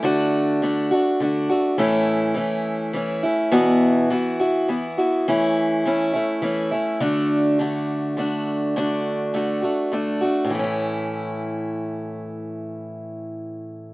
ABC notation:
X:1
M:3/4
L:1/8
Q:1/4=103
K:A
V:1 name="Steel-string acoustic guitar"
[D,A,DF]2 [D,A,DF] [A,DF] [D,A,DF] [A,DF] | [A,,E,A,CE]2 [E,A,CE]2 [E,A,CE] [A,CE] | [E,,B,,E,B,EF]2 [E,B,EF] [E,B,EF] [E,B,EF] [E,B,EF] | [E,A,CE]2 [E,A,CE] [A,CE] [E,A,CE] [A,CE] |
[D,A,DF]2 [D,A,DF]2 [D,A,DF]2 | [D,A,DF]2 [D,A,DF] [A,DF] [D,A,DF] [A,DF] | [A,,E,A,CE]6- | [A,,E,A,CE]6 |]